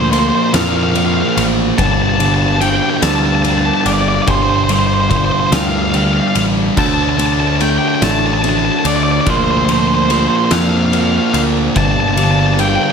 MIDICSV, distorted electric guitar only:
0, 0, Header, 1, 2, 480
1, 0, Start_track
1, 0, Key_signature, -2, "minor"
1, 0, Tempo, 831025
1, 1033, Time_signature, 6, 3, 24, 8
1, 7466, End_track
2, 0, Start_track
2, 0, Title_t, "Distorted electric guitar"
2, 0, Program_c, 0, 30
2, 0, Note_on_c, 0, 46, 95
2, 0, Note_on_c, 0, 53, 107
2, 0, Note_on_c, 0, 58, 110
2, 58, Note_off_c, 0, 46, 0
2, 65, Note_off_c, 0, 53, 0
2, 65, Note_on_c, 0, 46, 96
2, 68, Note_off_c, 0, 58, 0
2, 68, Note_on_c, 0, 53, 91
2, 71, Note_on_c, 0, 58, 107
2, 298, Note_off_c, 0, 46, 0
2, 305, Note_on_c, 0, 46, 107
2, 306, Note_off_c, 0, 53, 0
2, 306, Note_off_c, 0, 58, 0
2, 308, Note_on_c, 0, 53, 122
2, 309, Note_on_c, 0, 58, 117
2, 543, Note_off_c, 0, 46, 0
2, 550, Note_off_c, 0, 53, 0
2, 550, Note_on_c, 0, 46, 82
2, 552, Note_off_c, 0, 58, 0
2, 552, Note_on_c, 0, 53, 102
2, 554, Note_on_c, 0, 58, 98
2, 1017, Note_off_c, 0, 46, 0
2, 1030, Note_on_c, 0, 43, 111
2, 1030, Note_on_c, 0, 50, 109
2, 1031, Note_off_c, 0, 53, 0
2, 1033, Note_on_c, 0, 55, 114
2, 1263, Note_off_c, 0, 50, 0
2, 1266, Note_off_c, 0, 43, 0
2, 1268, Note_on_c, 0, 43, 95
2, 1270, Note_off_c, 0, 55, 0
2, 1270, Note_on_c, 0, 50, 105
2, 1272, Note_on_c, 0, 55, 94
2, 1503, Note_off_c, 0, 50, 0
2, 1506, Note_off_c, 0, 43, 0
2, 1508, Note_on_c, 0, 43, 87
2, 1510, Note_off_c, 0, 55, 0
2, 1510, Note_on_c, 0, 50, 98
2, 1512, Note_on_c, 0, 55, 99
2, 1740, Note_off_c, 0, 43, 0
2, 1743, Note_off_c, 0, 50, 0
2, 1745, Note_off_c, 0, 55, 0
2, 1747, Note_on_c, 0, 43, 109
2, 1750, Note_on_c, 0, 50, 114
2, 1752, Note_on_c, 0, 55, 118
2, 1982, Note_off_c, 0, 43, 0
2, 1984, Note_off_c, 0, 50, 0
2, 1986, Note_off_c, 0, 55, 0
2, 1989, Note_on_c, 0, 43, 81
2, 1991, Note_on_c, 0, 50, 93
2, 1993, Note_on_c, 0, 55, 98
2, 2460, Note_off_c, 0, 43, 0
2, 2462, Note_off_c, 0, 50, 0
2, 2464, Note_off_c, 0, 55, 0
2, 2467, Note_on_c, 0, 43, 107
2, 2469, Note_on_c, 0, 50, 100
2, 2471, Note_on_c, 0, 55, 105
2, 2576, Note_off_c, 0, 58, 0
2, 2704, Note_off_c, 0, 43, 0
2, 2705, Note_off_c, 0, 50, 0
2, 2707, Note_off_c, 0, 55, 0
2, 2710, Note_on_c, 0, 43, 96
2, 2711, Note_on_c, 0, 50, 102
2, 2714, Note_on_c, 0, 55, 95
2, 2942, Note_off_c, 0, 43, 0
2, 2945, Note_off_c, 0, 50, 0
2, 2947, Note_off_c, 0, 55, 0
2, 2949, Note_on_c, 0, 43, 86
2, 2952, Note_on_c, 0, 50, 82
2, 2954, Note_on_c, 0, 55, 87
2, 3182, Note_off_c, 0, 43, 0
2, 3186, Note_off_c, 0, 50, 0
2, 3187, Note_off_c, 0, 55, 0
2, 3189, Note_on_c, 0, 43, 100
2, 3193, Note_on_c, 0, 50, 113
2, 3194, Note_on_c, 0, 55, 122
2, 3423, Note_off_c, 0, 43, 0
2, 3426, Note_off_c, 0, 50, 0
2, 3428, Note_off_c, 0, 55, 0
2, 3430, Note_on_c, 0, 43, 82
2, 3433, Note_on_c, 0, 50, 81
2, 3435, Note_on_c, 0, 55, 94
2, 3896, Note_off_c, 0, 43, 0
2, 3898, Note_off_c, 0, 50, 0
2, 3899, Note_off_c, 0, 55, 0
2, 3909, Note_on_c, 0, 50, 100
2, 3912, Note_on_c, 0, 57, 106
2, 3915, Note_on_c, 0, 62, 104
2, 4144, Note_off_c, 0, 57, 0
2, 4146, Note_off_c, 0, 50, 0
2, 4149, Note_on_c, 0, 50, 91
2, 4150, Note_off_c, 0, 62, 0
2, 4151, Note_on_c, 0, 57, 100
2, 4153, Note_on_c, 0, 62, 106
2, 4389, Note_off_c, 0, 57, 0
2, 4391, Note_off_c, 0, 50, 0
2, 4394, Note_on_c, 0, 50, 85
2, 4395, Note_off_c, 0, 62, 0
2, 4396, Note_on_c, 0, 57, 97
2, 4397, Note_on_c, 0, 62, 99
2, 4628, Note_off_c, 0, 50, 0
2, 4631, Note_off_c, 0, 57, 0
2, 4635, Note_on_c, 0, 50, 104
2, 4637, Note_off_c, 0, 62, 0
2, 4637, Note_on_c, 0, 57, 113
2, 4640, Note_on_c, 0, 62, 115
2, 4865, Note_off_c, 0, 50, 0
2, 4868, Note_off_c, 0, 57, 0
2, 4872, Note_on_c, 0, 50, 86
2, 4874, Note_off_c, 0, 62, 0
2, 4875, Note_on_c, 0, 57, 88
2, 4877, Note_on_c, 0, 62, 90
2, 5337, Note_off_c, 0, 50, 0
2, 5338, Note_off_c, 0, 57, 0
2, 5353, Note_on_c, 0, 46, 99
2, 5354, Note_off_c, 0, 62, 0
2, 5355, Note_on_c, 0, 53, 120
2, 5357, Note_on_c, 0, 58, 111
2, 5586, Note_off_c, 0, 46, 0
2, 5592, Note_off_c, 0, 53, 0
2, 5592, Note_on_c, 0, 46, 95
2, 5595, Note_off_c, 0, 58, 0
2, 5595, Note_on_c, 0, 53, 104
2, 5597, Note_on_c, 0, 58, 112
2, 5824, Note_off_c, 0, 46, 0
2, 5831, Note_off_c, 0, 53, 0
2, 5831, Note_on_c, 0, 46, 97
2, 5833, Note_on_c, 0, 53, 102
2, 5834, Note_off_c, 0, 58, 0
2, 5836, Note_on_c, 0, 58, 92
2, 6063, Note_off_c, 0, 46, 0
2, 6070, Note_on_c, 0, 46, 114
2, 6071, Note_off_c, 0, 53, 0
2, 6073, Note_off_c, 0, 58, 0
2, 6073, Note_on_c, 0, 53, 111
2, 6075, Note_on_c, 0, 58, 127
2, 6302, Note_off_c, 0, 46, 0
2, 6309, Note_on_c, 0, 46, 88
2, 6310, Note_off_c, 0, 53, 0
2, 6312, Note_off_c, 0, 58, 0
2, 6312, Note_on_c, 0, 53, 91
2, 6314, Note_on_c, 0, 58, 96
2, 6775, Note_off_c, 0, 46, 0
2, 6788, Note_on_c, 0, 43, 109
2, 6790, Note_off_c, 0, 53, 0
2, 6791, Note_on_c, 0, 50, 111
2, 6793, Note_on_c, 0, 55, 117
2, 7027, Note_off_c, 0, 50, 0
2, 7029, Note_off_c, 0, 43, 0
2, 7031, Note_on_c, 0, 43, 101
2, 7033, Note_off_c, 0, 55, 0
2, 7034, Note_on_c, 0, 50, 109
2, 7035, Note_on_c, 0, 55, 105
2, 7265, Note_off_c, 0, 50, 0
2, 7267, Note_off_c, 0, 43, 0
2, 7269, Note_on_c, 0, 43, 95
2, 7272, Note_off_c, 0, 55, 0
2, 7272, Note_on_c, 0, 50, 96
2, 7274, Note_on_c, 0, 55, 100
2, 7466, Note_off_c, 0, 43, 0
2, 7466, Note_off_c, 0, 50, 0
2, 7466, Note_off_c, 0, 55, 0
2, 7466, Note_off_c, 0, 58, 0
2, 7466, End_track
0, 0, End_of_file